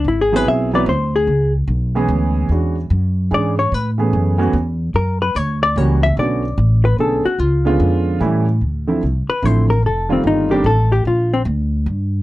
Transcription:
X:1
M:3/4
L:1/8
Q:"Swing" 1/4=147
K:C#phr
V:1 name="Hollow-body jazz guitar"
(3E G B e d ^B G- | G z4 z | z4 d c | B z4 z |
^A B c d c e | d3 B A F | ^E4 z2 | [K:Dm] z3 =B c _B |
A C _E G A G | F C z4 |]
V:2 name="Grand piano"
z [F,B,^B,EG]2 [F,=B,^B,E=B] z2 | z3 [E,G,B,CG]3 | [E,G,CDF] z3 [E,G,CDG] z | z [E,A,B,CG]2 [E,A,B,CF] z2 |
z4 [E,=G,^A,CF] z | [D,A,B,CF] z3 [D,A,B,CG] z | z [D,G,B,C^E]3 [=E,=G,A,C=E] z | [K:Dm] z [D,F,A,CE] z2 [D,F,A,CE] z |
z [_E,G,A,CF]2 [E,G,A,CD] z2 | z6 |]
V:3 name="Upright bass" clef=bass
G,,,2 B,,,2 D,,2 | C,,2 B,,,2 D,,2 | E,,2 F,,2 G,,2 | A,,2 F,,2 E,,2 |
F,,2 D,,2 C,,2 | B,,,2 A,,,2 B,,, z | C,,2 ^E,,2 A,,2 | [K:Dm] D,,2 C,, z A,,,2 |
F,,,2 G,,,2 A,,,2 | B,,,2 D,,2 G,,2 |]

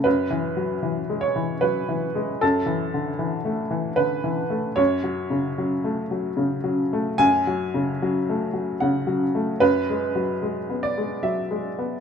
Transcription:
X:1
M:3/4
L:1/8
Q:1/4=75
K:F#m
V:1 name="Upright piano"
B3 c B2 | A4 B2 | c6 | g4 f z |
B3 d e2 |]
V:2 name="Upright piano" clef=bass
(3F,, E, F, (3E, G, E, (3F, E, G, | (3F,, E, D, (3E, A, E, (3D, E, A, | (3F,, F, C, (3F, A, F, (3C, F, A, | (3F,, F, C, (3F, A, F, (3C, F, A, |
(3F,, G, F, (3G, B, G, (3F, G, B, |]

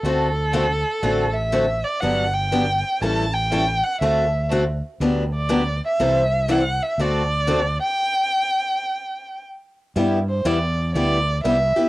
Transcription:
X:1
M:4/4
L:1/8
Q:"Swing" 1/4=121
K:G
V:1 name="Violin"
A4- A e2 d | f g3 a g2 f | e2 z3 d2 e- | e2 f e d3 g- |
g6 z2 | z c d2 d2 e2 |]
V:2 name="Steel-string acoustic guitar"
[D,A,CFA] z [D,A,CFA] z [D,A,CFA] z [D,A,CFA] z | [D,F,B,DG] z [D,F,B,DG] z [E,G,^CEA] z [E,G,CEA] z | [D,A,CFA] z [D,A,CFA] z [D,F,B,DG] z [D,F,B,DG] z | [C,E,G,CEA] z [C,E,G,CEA] z [D,A,CFA] z [D,A,CFA] z |
z8 | [G,B,EG] z [G,B,EG] z [G,B,EG] z [G,B,EG] [B,EG] |]
V:3 name="Steel-string acoustic guitar"
[D,A,CFA] z [D,A,CFA] z [D,A,CFA] z [D,A,CFA] z | [D,F,B,DG] z [D,F,B,DG] z [E,G,^CEA] z [E,G,CEA] z | [D,A,CFA] z [D,A,CFA] z [D,F,B,DG] z [D,F,B,DG] z | [C,E,G,CEA] z [C,E,G,CEA] z [D,A,CFA] z [D,A,CFA] z |
z8 | [G,B,EG] z [G,B,EG] z [G,B,EG] z [G,B,EG] z |]
V:4 name="Fretless electric bass" clef=bass
D,,4 A,,,4 | G,,,4 A,,,4 | D,,4 D,,4 | C,,4 D,,4 |
z8 | G,,2 E,,2 D,,2 C,, z |]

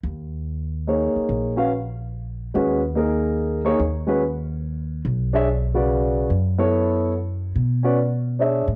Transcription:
X:1
M:3/4
L:1/8
Q:"Swing" 1/4=144
K:Ebphr
V:1 name="Grand piano"
z4 [B,EAd]2- | [B,EAd] [DGc=f] z4 | [A,DGc] z [B,EAB]3 [B,EAd] | z [A,DGc] z4 |
z [=DA^cf] z [^C,^F=B=d]3 | z [=B,F=A^c]3 z2 | z [^C^F=B=d] z2 [=DA^c_f] z |]
V:2 name="Upright bass" clef=bass
E,,4- E,, z | B,,,6 | E,,6 | E,,6 |
=B,,,6 | ^F,,6 | =B,,4- B,, =A,, |]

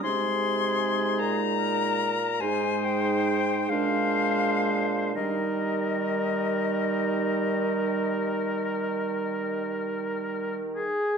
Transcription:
X:1
M:12/8
L:1/8
Q:3/8=41
K:Eb
V:1 name="Flute"
c'3 b3 a g2 f3 | e8- e z3 |]
V:2 name="Oboe"
A4 B2 c3 c3 | B8- B3 A |]
V:3 name="Clarinet"
E6 E3 D3 | E8- E3 z |]
V:4 name="French horn" clef=bass
A,6 A,3 A,3 | G,8- G,3 A |]
V:5 name="Bassoon" clef=bass
C,3 B,,3 A,,3 B,,3 | E,8- E,3 z |]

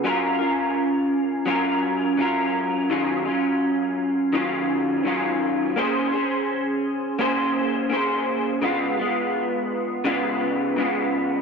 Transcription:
X:1
M:4/4
L:1/8
Q:"Swing 16ths" 1/4=84
K:Bbm
V:1 name="Clean electric guitar"
[G,DFB] [DFB]3 [G,DFB]2 [G,DFB]2 | [E,G,DF] [G,DF]3 [E,G,DF]2 [E,G,DF]2 | [B,DAc] [DAc]3 [B,DAc]2 [B,DAc]2 | [D,A,_CF] [A,CF]3 [D,A,CF]2 [D,A,CF]2 |]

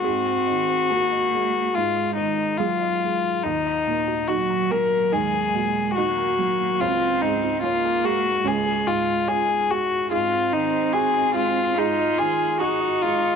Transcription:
X:1
M:4/4
L:1/16
Q:1/4=72
K:Abmix
V:1 name="Synth pluck"
A g e c A e e z A e c z A e z2 | E e B G E B B z E B G z E B z2 | D c A F D A A z D A F z D A z2 | A g e c A e e z A e c z A e z2 |]
V:2 name="Violin"
G8 F2 E2 F4 | E4 G2 B2 A4 G4 | F2 E2 F2 G2 A2 F2 A2 G2 | F2 E2 A2 F2 E2 A2 G2 F2 |]
V:3 name="Cello"
C4 B,4 A,6 z2 | z4 G,4 A,4 B,4 | C4 B,4 A,6 z2 | C8 F4 E4 |]
V:4 name="Felt piano" clef=bass
[A,,A,]2 E,2 G2 A,2 A,,2 E,2 G,2 A,2 | E,,2 B,,2 G2 G,2 E,,2 B,,2 G2 G,2 | D,,2 A,,2 F2 A,2 D,,2 A,,2 F2 A,2 | A,,2 E,2 G2 A,2 A,,2 E,2 G2 A,2 |]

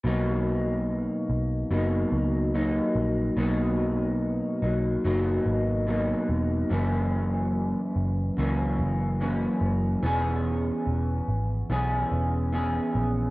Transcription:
X:1
M:4/4
L:1/16
Q:"Swing 16ths" 1/4=72
K:B
V:1 name="Clean electric guitar"
[B,,F,A,D]8 [B,,F,A,D]4 [F,A,D]4 | [B,,F,A,D]6 [F,A,D]2 [B,,F,A,D]4 [B,,F,A,D]4 | [F,,E,A,C]8 [F,,E,A,C]4 [F,,E,A,C]4 | [E,B,CG]8 [E,B,CG]4 [E,B,CG]4 |]
V:2 name="Picked electric bass" clef=bass
B,,,4- B,,, z B,,,2 F,,,2 C,,4 A,,,2 | B,,,4- B,,, z B,,,2 F,,,2 G,,,4 E,,,2 | F,,,4- F,,, z F,,,2 C,,2 F,,,4 F,,,2 | E,,,4 E,,,2 G,,,2 B,,,2 E,,,4 A,,,2 |]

